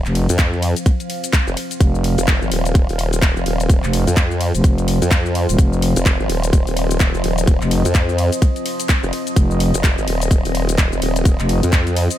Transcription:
Already playing: ambient pad F3 C4 C5 F5
0.06 fm bass F1, clap, shaker
0.15 open hi-hat, ride
0.29 wobble bass F2, closed hi-hat, shaker
0.39 kick, clap, closed hi-hat, ride, shaker
0.53 shaker
0.62 open hi-hat, ride
0.76 closed hi-hat, shaker
0.86 kick, closed hi-hat, ride, shaker
1.00 closed hi-hat, shaker
1.10 open hi-hat, ride
1.24 closed hi-hat, shaker
1.33 kick, clap, closed hi-hat, ride, shaker
1.47 wobble bass F1, shaker
1.57 open hi-hat, ride
1.71 closed hi-hat, shaker
1.81 fm bass F1, kick, closed hi-hat, ride, shaker
1.95 shaker
2.04 open hi-hat, ride
2.18 wobble bass F1, closed hi-hat, shaker
2.28 kick, clap, closed hi-hat, ride, shaker
2.42 wobble bass G#1, shaker
2.52 wobble bass D#1, open hi-hat, ride
2.65 closed hi-hat, shaker
2.75 kick, closed hi-hat, ride, shaker
2.89 wobble bass D#1, open hi-hat, shaker
2.99 open hi-hat, ride
3.13 closed hi-hat, shaker
3.22 kick, clap, closed hi-hat, ride, shaker
3.37 wobble bass F1, shaker
3.46 wobble bass D#1, open hi-hat, ride
3.60 closed hi-hat, shaker
3.70 kick, closed hi-hat, ride, shaker
3.84 fm bass F1, clap, shaker
3.93 open hi-hat, ride
4.07 wobble bass F2, closed hi-hat, shaker
4.17 kick, clap, closed hi-hat, ride, shaker
4.31 shaker
4.41 open hi-hat, ride
4.55 fm bass F1, closed hi-hat, shaker
4.64 fm bass F1, kick, closed hi-hat, ride, shaker
4.78 closed hi-hat, shaker
4.88 open hi-hat, ride
5.02 wobble bass F2, closed hi-hat, shaker
5.11 kick, clap, closed hi-hat, ride, shaker
5.26 shaker
5.35 open hi-hat, ride
5.49 fm bass D#1, closed hi-hat, shaker
5.59 fm bass F1, ambient pad D#5, kick, closed hi-hat, ride, shaker
5.73 shaker
5.82 open hi-hat, ride
5.96 wobble bass F1, closed hi-hat, shaker
6.06 kick, clap, closed hi-hat, ride, shaker
6.20 wobble bass G#1, shaker
6.29 wobble bass D#1, open hi-hat, ride
6.44 closed hi-hat, shaker
6.53 kick, closed hi-hat, ride, shaker
6.67 wobble bass D#1, open hi-hat, shaker
6.77 open hi-hat, ride
6.91 closed hi-hat, shaker
7.00 kick, clap, closed hi-hat, ride, shaker
7.14 wobble bass F1, shaker
7.24 wobble bass D#1, open hi-hat, ride
7.38 closed hi-hat, shaker
7.47 kick, closed hi-hat, ride, shaker
7.62 fm bass F1, clap, shaker
7.71 open hi-hat, ride
7.85 wobble bass F2, closed hi-hat, shaker
7.95 kick, clap, closed hi-hat, ride, shaker
8.09 shaker
8.18 open hi-hat, ride
8.32 closed hi-hat, shaker
8.42 kick, closed hi-hat, ride, shaker
8.56 closed hi-hat, shaker
8.66 open hi-hat, ride
8.80 closed hi-hat, shaker
8.89 kick, clap, closed hi-hat, ride, shaker
9.03 wobble bass F1, shaker
9.13 open hi-hat, ride
9.27 closed hi-hat, shaker
9.36 fm bass F1, kick, closed hi-hat, ride, shaker
9.51 shaker
9.60 open hi-hat, ride
9.74 wobble bass F1, closed hi-hat, shaker
9.84 kick, clap, closed hi-hat, ride, shaker
9.98 wobble bass G#1, shaker
10.07 wobble bass D#1, open hi-hat, ride
10.22 closed hi-hat, shaker
10.31 kick, closed hi-hat, ride, shaker
10.45 wobble bass D#1, open hi-hat, shaker
10.55 open hi-hat, ride
10.69 closed hi-hat, shaker
10.78 kick, clap, closed hi-hat, ride, shaker
10.93 wobble bass F1, shaker
11.02 wobble bass D#1, open hi-hat, ride
11.16 closed hi-hat, shaker
11.25 kick, closed hi-hat, ride, shaker
11.40 fm bass F1, clap, closed hi-hat, shaker
11.49 open hi-hat, ride
11.63 wobble bass F2, closed hi-hat, shaker
11.73 kick, clap, closed hi-hat, ride, shaker
11.87 closed hi-hat, shaker
11.96 open hi-hat, ride
12.11 closed hi-hat, shaker

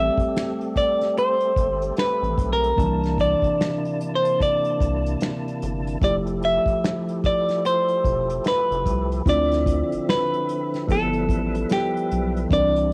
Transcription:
Already playing: analog synth bass A1, tine electric piano G3 A3 C4 G4, tonewheel organ A3 C4 G4 A4, clean electric guitar E5
0.18 analog synth bass G1, kick, closed hi-hat
0.37 finger snap, snare, closed hi-hat
0.61 closed hi-hat
0.76 clean electric guitar D5, kick, closed hi-hat
1.01 snare, closed hi-hat
1.17 clean electric guitar C5, closed hi-hat
1.40 closed hi-hat
1.56 analog synth bass G1, kick, closed hi-hat
1.82 closed hi-hat
1.96 clean electric guitar B4, finger snap, snare, closed hi-hat
2.22 analog synth bass A1, closed hi-hat
2.38 analog synth bass B1, kick, closed hi-hat
2.53 clean electric guitar A#4
2.64 closed hi-hat
2.76 analog synth bass C2, tonewheel organ C3 A#3 D4 E4 A5, tine electric piano D#3 A#3 D4 A5, kick, closed hi-hat
2.82 tine electric piano E3
3.03 snare, closed hi-hat
3.18 clean electric guitar D5, kick, closed hi-hat
3.42 analog synth bass C2, kick, closed hi-hat
3.61 finger snap, snare, closed hi-hat
3.85 closed hi-hat
4.01 closed hi-hat
4.15 clean electric guitar C5
4.25 closed hi-hat
4.40 clean electric guitar D5, kick, closed hi-hat
4.65 closed hi-hat
4.80 analog synth bass C2, kick, closed hi-hat
5.06 closed hi-hat
5.20 finger snap, snare, closed hi-hat
5.48 closed hi-hat
5.62 analog synth bass G1, closed hi-hat
5.87 closed hi-hat
6.01 analog synth bass F1, tine electric piano F3 A3 E4 G4, tonewheel organ F3 G4 A4, clean electric guitar D5, kick, closed hi-hat
6.27 closed hi-hat
6.43 clean electric guitar E5, closed hi-hat
6.66 analog synth bass E1, kick, closed hi-hat
6.84 finger snap, snare, closed hi-hat
7.09 closed hi-hat
7.24 clean electric guitar D5, kick, closed hi-hat
7.49 snare, closed hi-hat
7.65 clean electric guitar C5, closed hi-hat
7.88 closed hi-hat
8.04 analog synth bass E1, kick, closed hi-hat
8.30 closed hi-hat
8.44 clean electric guitar B4, finger snap, snare, closed hi-hat
8.71 analog synth bass F1, closed hi-hat
8.86 analog synth bass C2, kick, closed hi-hat
9.12 closed hi-hat
9.25 analog synth bass D2, tonewheel organ D3 F3 C4 E5, tine electric piano C4 D4 E4 F4, kick, closed hi-hat
9.29 clean electric guitar D5
9.51 snare, closed hi-hat
9.66 kick, closed hi-hat
9.92 analog synth bass G1, closed hi-hat
10.09 clean electric guitar B4, finger snap, snare, closed hi-hat
10.34 closed hi-hat
10.49 closed hi-hat
10.74 snare, closed hi-hat
10.87 analog synth bass G1, tine electric piano F3 A3 E4 A4, tonewheel organ G3 A4 B4 E5, kick, closed hi-hat
10.92 tine electric piano B3, clean electric guitar A4
11.13 closed hi-hat
11.29 analog synth bass A1, kick, closed hi-hat
11.55 closed hi-hat
11.69 clean electric guitar G4, finger snap, snare, closed hi-hat
11.97 closed hi-hat
12.11 analog synth bass B1, closed hi-hat
12.36 closed hi-hat
12.49 analog synth bass C2, tine electric piano E3 C4 D4 A#4, tonewheel organ G3 C4 D4 E4, kick, closed hi-hat
12.53 clean electric guitar D5
12.59 tine electric piano D5
12.76 closed hi-hat

